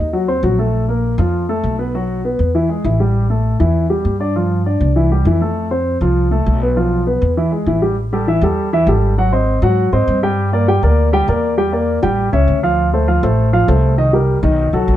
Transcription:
0.00 0.40 D#2 medium
0.13 0.25 F#3 medium
0.13 0.25 F#4 medium
0.28 0.40 C4 medium
0.28 0.41 C5 medium
0.43 1.13 A#1 medium
0.43 0.56 F#3 medium
0.43 0.56 F#4 medium
0.59 0.83 A3 medium
0.59 0.83 A4 medium
0.88 1.13 A#3 medium
0.88 1.13 A#4 medium
1.18 1.60 F2 medium
1.18 1.43 F3 medium
1.18 1.44 F4 medium
1.49 1.74 A3 medium
1.49 1.74 A4 medium
1.64 2.34 B1 medium
1.79 1.91 B3 medium
1.79 1.91 B4 medium
1.94 2.19 F#3 medium
1.94 2.19 F#4 medium
2.25 2.49 B3 medium
2.25 2.49 B4 medium
2.39 2.81 E2 medium
2.55 2.67 E3 medium
2.55 2.67 E4 medium
2.69 2.82 G#3 medium
2.69 2.82 G#4 medium
2.84 3.54 A1 medium
2.84 2.97 E3 medium
2.84 2.97 E4 medium
3.00 3.25 G3 medium
3.00 3.25 G4 medium
3.30 3.55 A3 medium
3.30 3.55 A4 medium
3.60 4.02 E2 medium
3.60 3.85 E3 medium
3.60 3.85 E4 medium
3.90 4.15 G3 medium
3.90 4.15 G4 medium
4.05 4.75 G2 medium
4.20 4.33 D4 medium
4.20 4.33 D5 medium
4.36 4.60 F3 medium
4.36 4.60 F4 medium
4.66 4.91 D4 medium
4.66 4.91 D5 medium
4.81 5.23 C2 medium
4.96 5.08 E3 medium
4.96 5.08 E4 medium
5.11 5.24 G3 medium
5.11 5.24 G4 medium
5.25 5.95 F2 medium
5.25 5.39 E3 medium
5.25 5.39 E4 medium
5.41 5.66 A3 medium
5.41 5.66 A4 medium
5.71 5.96 C4 medium
5.71 5.96 C5 medium
6.01 6.43 C2 medium
6.01 6.26 F3 medium
6.01 6.26 F4 medium
6.31 6.56 A3 medium
6.31 6.56 A4 medium
6.46 7.16 B1 medium
6.62 6.74 B3 medium
6.62 6.74 B4 medium
6.77 7.01 F3 medium
6.77 7.01 F4 medium
7.07 7.31 B3 medium
7.07 7.32 B4 medium
7.22 7.64 E2 medium
7.37 7.49 E3 medium
7.37 7.50 E4 medium
7.51 7.64 G#3 medium
7.51 7.64 G#4 medium
7.66 8.36 A1 medium
7.66 7.79 E3 medium
7.66 7.80 E4 medium
7.82 7.94 G3 medium
7.82 7.94 G4 medium
8.13 8.25 G3 medium
8.13 8.25 G4 medium
8.13 8.25 A4 medium
8.27 8.40 E3 medium
8.27 8.40 E4 medium
8.27 8.40 E5 medium
8.41 8.84 E2 medium
8.41 8.67 G3 medium
8.41 8.68 G4 medium
8.41 8.68 A4 medium
8.73 8.85 E3 medium
8.73 8.85 E4 medium
8.73 8.85 E5 medium
8.87 9.57 G#1 medium
8.87 9.13 G3 medium
8.87 9.13 G4 medium
8.87 9.13 A4 medium
9.18 9.30 F#3 medium
9.18 9.30 F#4 medium
9.18 9.30 F#5 medium
9.32 9.57 C4 medium
9.32 9.57 C5 medium
9.32 9.57 D#5 medium
9.62 9.90 G#2 medium
9.62 9.87 F#3 medium
9.62 9.87 F#4 medium
9.62 9.88 F#5 medium
9.92 10.06 G#2 medium
9.92 10.17 C4 medium
9.92 10.17 C5 medium
9.92 10.18 D#5 medium
10.07 10.77 G2 medium
10.23 10.47 G3 medium
10.23 10.48 G4 medium
10.23 10.48 G5 medium
10.52 10.65 A#3 medium
10.52 10.65 A#4 medium
10.52 10.65 D5 medium
10.68 10.80 G3 medium
10.68 10.80 G4 medium
10.68 10.80 G5 medium
10.82 11.25 D2 medium
10.82 11.07 A#3 medium
10.82 11.07 A#4 medium
10.82 11.08 D5 medium
11.13 11.25 G3 medium
11.13 11.25 G4 medium
11.13 11.25 G5 medium
11.28 11.97 E2 medium
11.28 11.52 A#3 medium
11.28 11.53 A#4 medium
11.28 11.53 D5 medium
11.57 11.70 G3 medium
11.57 11.70 G4 medium
11.57 11.70 G5 medium
11.72 11.97 A#3 medium
11.72 11.97 A#4 medium
11.72 11.98 D5 medium
12.02 12.31 A1 medium
12.02 12.27 G3 medium
12.02 12.27 G4 medium
12.02 12.28 G5 medium
12.32 12.47 C#2 medium
12.32 12.57 C#4 medium
12.32 12.57 C#5 medium
12.32 12.58 E5 medium
12.48 13.17 D2 medium
12.63 12.88 F3 medium
12.63 12.88 F4 medium
12.63 12.88 F5 medium
12.93 13.05 A3 medium
12.93 13.06 A4 medium
12.93 13.06 C5 medium
13.08 13.20 F3 medium
13.08 13.20 F4 medium
13.08 13.20 F5 medium
13.23 13.65 A1 medium
13.23 13.48 A3 medium
13.23 13.48 A4 medium
13.23 13.48 C5 medium
13.53 13.65 F3 medium
13.53 13.65 F4 medium
13.53 13.66 F5 medium
13.68 14.38 C2 medium
13.68 13.92 A3 medium
13.68 13.93 A4 medium
13.68 13.93 C5 medium
13.98 14.10 D#3 medium
13.98 14.10 D#4 medium
13.98 14.10 D#5 medium
14.13 14.38 G3 medium
14.13 14.38 G4 medium
14.13 14.38 A#4 medium
14.43 14.71 B1 medium
14.43 14.67 D#3 medium
14.43 14.68 D#4 medium
14.43 14.68 D#5 medium
14.73 14.87 B1 medium
14.73 14.97 F#3 medium
14.73 14.97 F#4 medium
14.73 14.97 A4 medium
14.88 14.97 A#1 medium

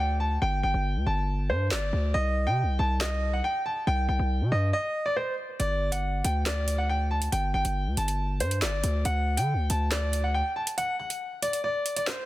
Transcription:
0.00 0.38 D2 loud
0.00 0.15 G5 medium
0.20 0.37 A5 medium
0.42 0.63 G1 loud
0.42 0.58 G5 medium
0.63 0.74 G1 loud
0.63 1.04 G5 medium
0.74 0.97 G1 loud
0.96 1.06 D2 loud
1.06 1.51 G1 loud
1.06 1.47 A5 medium
1.50 1.73 G2 loud
1.50 1.66 C5 medium
1.71 1.92 G1 loud
1.71 2.12 D5 medium
1.71 snare loud
1.71 clap loud
1.93 2.14 D2 loud
2.14 2.48 C2 loud
2.14 2.45 D#5 loud
2.47 2.65 C3 loud
2.47 2.77 G5 medium
2.63 2.78 C2 loud
2.79 3.41 C2 loud
2.79 2.96 A5 medium
3.01 3.31 D#5 loud
3.01 snare loud
3.01 clap medium
3.33 3.42 F#5 medium
3.44 3.61 G5 medium
3.66 3.82 A5 medium
3.87 4.08 C2 loud
3.87 4.04 G5 loud
4.09 4.19 C2 loud
4.09 4.49 G5 medium
4.19 4.43 C2 loud
4.41 4.51 C3 loud
4.52 4.73 G2 loud
4.52 4.68 D#5 medium
4.73 5.04 D#5 medium
5.06 5.14 D5 medium
5.16 5.33 C5 medium
5.60 6.22 G1 loud
5.60 5.90 D5 loud
5.60 closed hi-hat medium
5.92 6.22 F#5 medium
5.92 closed hi-hat medium
6.24 7.28 D2 loud
6.24 6.41 G5 medium
6.24 closed hi-hat medium
6.46 6.76 D5 medium
6.46 snare loud
6.46 clap medium
6.46 closed hi-hat medium
6.68 closed hi-hat medium
6.78 6.87 F#5 medium
6.89 7.06 G5 medium
7.11 7.27 A5 medium
7.22 closed hi-hat medium
7.32 7.53 G1 loud
7.32 7.49 G5 medium
7.32 closed hi-hat medium
7.54 7.64 G1 loud
7.54 7.95 G5 medium
7.65 7.88 G1 loud
7.65 closed hi-hat medium
7.86 7.97 D2 loud
7.97 8.42 G1 loud
7.97 8.38 A5 medium
7.97 closed hi-hat medium
8.08 closed hi-hat medium
8.40 8.63 G2 loud
8.40 8.57 C5 medium
8.40 closed hi-hat medium
8.51 closed hi-hat medium
8.62 8.82 G1 loud
8.62 9.03 D5 medium
8.62 snare loud
8.62 clap loud
8.84 9.04 D2 loud
8.84 closed hi-hat medium
9.05 9.39 D2 loud
9.05 9.36 F#5 loud
9.05 closed hi-hat medium
9.37 9.55 D3 loud
9.37 9.68 G5 medium
9.37 closed hi-hat medium
9.54 9.69 D2 loud
9.70 10.42 D2 loud
9.70 9.87 A5 medium
9.70 closed hi-hat medium
9.91 10.22 D5 medium
9.91 snare loud
9.91 clap medium
9.91 closed hi-hat medium
10.13 closed hi-hat medium
10.24 10.32 F#5 medium
10.34 10.51 G5 medium
10.56 10.73 A5 medium
10.67 closed hi-hat medium
10.78 10.94 F#5 loud
10.78 closed hi-hat medium
10.99 11.40 F#5 medium
11.10 closed hi-hat medium
11.42 11.59 D5 medium
11.42 closed hi-hat medium
11.53 closed hi-hat medium
11.64 11.94 D5 medium
11.86 closed hi-hat medium
11.96 12.05 D5 medium
11.96 closed hi-hat medium
12.07 12.24 C5 medium
12.07 snare loud
12.07 clap medium

